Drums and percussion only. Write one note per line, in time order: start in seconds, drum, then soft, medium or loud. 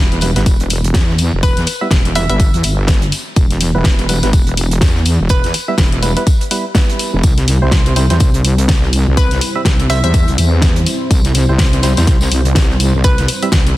0.12 closed hi-hat soft
0.21 open hi-hat medium
0.21 tambourine medium
0.36 snare medium
0.36 closed hi-hat medium
0.46 kick loud
0.46 closed hi-hat medium
0.46 tambourine medium
0.60 closed hi-hat soft
0.70 open hi-hat loud
0.70 tambourine medium
0.84 closed hi-hat soft
0.94 kick loud
0.94 snare loud
0.94 closed hi-hat medium
0.94 tambourine medium
1.09 snare soft
1.18 open hi-hat medium
1.18 tambourine medium
1.43 kick loud
1.43 closed hi-hat medium
1.43 tambourine medium
1.57 snare medium
1.57 closed hi-hat medium
1.67 open hi-hat loud
1.67 tambourine medium
1.91 kick loud
1.91 snare loud
1.91 closed hi-hat medium
1.91 tambourine medium
2.05 closed hi-hat soft
2.15 open hi-hat medium
2.15 tambourine medium
2.29 closed hi-hat medium
2.40 kick loud
2.40 closed hi-hat medium
2.40 tambourine medium
2.54 closed hi-hat soft
2.63 open hi-hat loud
2.63 tambourine medium
2.87 kick loud
2.87 snare loud
2.87 closed hi-hat medium
2.87 tambourine medium
3.02 closed hi-hat soft
3.12 open hi-hat medium
3.12 tambourine medium
3.36 kick loud
3.36 closed hi-hat medium
3.36 tambourine medium
3.50 snare soft
3.50 closed hi-hat soft
3.60 snare soft
3.60 open hi-hat loud
3.60 tambourine medium
3.84 kick loud
3.84 snare loud
3.84 closed hi-hat medium
3.84 tambourine medium
3.99 closed hi-hat soft
4.09 open hi-hat medium
4.09 tambourine medium
4.23 snare medium
4.23 closed hi-hat soft
4.33 kick loud
4.33 closed hi-hat medium
4.33 tambourine medium
4.47 closed hi-hat soft
4.57 open hi-hat loud
4.57 tambourine medium
4.71 closed hi-hat soft
4.81 kick loud
4.81 snare loud
4.81 closed hi-hat medium
4.81 tambourine medium
4.96 snare soft
5.05 open hi-hat loud
5.05 tambourine medium
5.29 kick loud
5.29 closed hi-hat medium
5.29 tambourine medium
5.44 snare soft
5.44 closed hi-hat soft
5.54 open hi-hat loud
5.54 tambourine medium
5.78 kick loud
5.78 snare loud
5.78 closed hi-hat medium
5.78 tambourine medium
5.92 closed hi-hat soft
6.02 open hi-hat medium
6.02 tambourine medium
6.17 closed hi-hat soft
6.27 kick loud
6.27 closed hi-hat medium
6.27 tambourine medium
6.41 closed hi-hat soft
6.51 open hi-hat loud
6.51 tambourine medium
6.75 kick loud
6.75 snare loud
6.75 closed hi-hat medium
6.75 tambourine medium
6.90 closed hi-hat soft
6.99 open hi-hat medium
6.99 tambourine medium
7.23 kick loud
7.23 closed hi-hat medium
7.23 tambourine medium
7.38 snare soft
7.38 closed hi-hat soft
7.48 snare soft
7.48 open hi-hat loud
7.48 tambourine medium
7.71 kick loud
7.71 snare loud
7.71 closed hi-hat medium
7.71 tambourine medium
7.86 closed hi-hat soft
7.96 open hi-hat medium
7.96 tambourine medium
8.10 snare medium
8.10 closed hi-hat soft
8.20 kick loud
8.20 closed hi-hat medium
8.20 tambourine medium
8.34 closed hi-hat soft
8.45 open hi-hat loud
8.45 tambourine medium
8.58 closed hi-hat soft
8.68 kick loud
8.68 snare loud
8.68 closed hi-hat medium
8.68 tambourine medium
8.83 snare soft
8.93 open hi-hat medium
8.93 tambourine medium
9.17 kick loud
9.17 closed hi-hat medium
9.17 tambourine medium
9.31 snare soft
9.31 closed hi-hat soft
9.41 open hi-hat loud
9.41 tambourine medium
9.65 kick loud
9.65 snare loud
9.65 closed hi-hat medium
9.65 tambourine medium
9.80 closed hi-hat soft
9.90 open hi-hat medium
9.90 tambourine medium
10.04 closed hi-hat medium
10.14 kick loud
10.14 closed hi-hat medium
10.14 tambourine medium
10.28 closed hi-hat soft
10.38 open hi-hat loud
10.38 tambourine medium
10.62 kick loud
10.62 snare loud
10.62 closed hi-hat medium
10.62 tambourine medium
10.76 closed hi-hat soft
10.86 open hi-hat medium
10.86 tambourine medium
11.11 kick loud
11.11 closed hi-hat medium
11.11 tambourine medium
11.25 snare soft
11.25 closed hi-hat medium
11.34 snare soft
11.34 open hi-hat loud
11.34 tambourine medium
11.58 kick loud
11.58 snare loud
11.58 closed hi-hat medium
11.58 tambourine medium
11.73 closed hi-hat soft
11.83 snare loud
11.83 open hi-hat medium
11.83 tambourine medium
11.97 snare medium
11.97 closed hi-hat medium
11.97 tambourine medium
12.07 kick loud
12.07 snare loud
12.07 closed hi-hat medium
12.07 tambourine medium
12.21 snare loud
12.21 tambourine medium
12.31 open hi-hat medium
12.31 tambourine medium
12.45 closed hi-hat soft
12.55 kick loud
12.55 snare loud
12.55 closed hi-hat medium
12.55 tambourine medium
12.70 snare soft
12.80 open hi-hat medium
12.80 tambourine medium
13.04 kick loud
13.04 closed hi-hat medium
13.04 tambourine medium
13.17 snare medium
13.17 closed hi-hat medium
13.28 open hi-hat loud
13.28 tambourine medium
13.42 closed hi-hat soft
13.52 kick loud
13.52 snare loud
13.52 closed hi-hat medium
13.52 tambourine medium
13.67 closed hi-hat soft